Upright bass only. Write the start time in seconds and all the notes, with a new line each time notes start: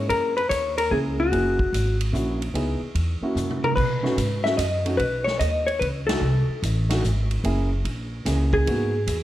0.09 F#2
0.50 D#2
0.91 C#2
1.32 F#1
1.73 G#1
2.13 A#1
2.54 C#2
2.81 muted upright bass stroke
2.95 E2
3.21 muted upright bass stroke
3.35 F#2
3.76 B2
4.17 G#2
4.58 F#2
4.99 B1
5.40 D#2
5.81 C#2
6.21 C2
6.48 muted upright bass stroke
6.62 A1
7.03 G#1
7.44 F#1
7.85 A#1
8.25 C#2
8.66 G#2
9.07 E2